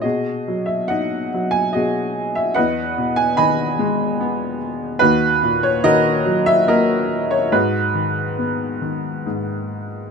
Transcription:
<<
  \new Staff \with { instrumentName = "Upright piano" } { \time 3/4 \key gis \minor \tempo 4 = 72 << { dis''8. e''16 fis''8. gis''16 dis''8. e''16 | fis''8. gis''16 b''4 r4 | b'8. cis''16 dis''8. e''16 dis''8. cis''16 | b'2 r4 | } \\ { <fis' gis'>4 dis''4 <fis' gis'>4 | <b' dis''>4 <dis'' gis''>4. r8 | <dis' fis'>4 <fis' ais'>4 <fis' ais'>4 | <dis' fis'>2 r4 | } >> }
  \new Staff \with { instrumentName = "Upright piano" } { \clef bass \time 3/4 \key gis \minor b,8 fis8 dis'8 fis8 b,4 | e,8 b,8 dis8 gis8 b4 | dis,8 ais,8 dis8 fis8 ais4 | gis,8 dis8 b8 dis8 gis,4 | }
>>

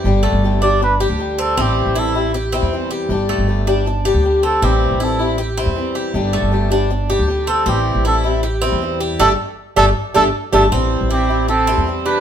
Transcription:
<<
  \new Staff \with { instrumentName = "Muted trumpet" } { \time 4/4 \key a \minor \tempo 4 = 158 r4. d''8 b'8 r4 a'8 | g'4 a'8 r2 r8 | r2. r8 a'8 | g'4 a'8 r2 r8 |
r2. r8 a'8 | g'4 a'8 r2 r8 | a'8 r4 a'8 r8 a'8 r8 a'8 | r4 g'4 a'4 r8 b'8 | }
  \new Staff \with { instrumentName = "Cuban tres" } { \time 4/4 \key a \minor g'8 a4 d'4 g'4 c'8 | c'4 e'4 g'8 c'4 g'8~ | g'8 a4 d'4 g'4 c'8 | c'4 e'4 g'8 c'4 g'8~ |
g'8 a4 d'4 g'4 c'8 | c'4 e'4 g'8 c'4 g'8 | <a d' g'>8 r4 <a d' g'>8 r8 <a d' g'>8 r8 <a d' g'>8 | c'4 e'4 g'8 c'4 g'8 | }
  \new Staff \with { instrumentName = "Steel-string acoustic guitar" } { \time 4/4 \key a \minor <d g d' g'>4 <d g d' g'>8 <g d' g'>8 r8 <g d' g'>8 <d g d' g'>4 | <e g c' e'>4 <e g c' e'>8 <g c' e'>8 r8 <g c' e'>8 <e g c' e'>4 | <d g d' g'>4 <d g d' g'>8 <g d' g'>8 r8 <g d' g'>8 <d g d' g'>4 | <e g c' e'>4 <e g c' e'>8 <g c' e'>8 r8 <g c' e'>8 <e g c' e'>4 |
<d g d' g'>4 <d g d' g'>8 <g d' g'>8 r8 <g d' g'>8 <d g d' g'>4 | <e g c' e'>4 <e g c' e'>8 <g c' e'>8 r8 <g c' e'>8 <e g c' e'>4 | <g a d'>8 r4 <g a d'>8 r8 <g a d'>8 r8 <g a d'>8 | <e g c' e'>4 <e g c' e'>8 <g c' e'>8 r8 <g c' e'>8 <e g c' e'>4 | }
  \new Staff \with { instrumentName = "Trumpet" } { \time 4/4 \key a \minor r1 | r1 | r1 | r1 |
r1 | r1 | r1 | r4 c'4 c'4 r8 d'8 | }
  \new Staff \with { instrumentName = "Upright bass" } { \clef bass \time 4/4 \key a \minor g,,8. g,,2 d,4~ d,16 | a,,8. a,,2 e,4~ e,16 | g,,8. g,,2 d,4~ d,16 | a,,8. a,,2 e,4~ e,16 |
g,,8. g,,2 d,4~ d,16 | a,,8. a,,2 e,4~ e,16 | g,,8 r4 g,,8 r8 g,,8 r8 g,,8 | a,,8. a,,2 e,4~ e,16 | }
>>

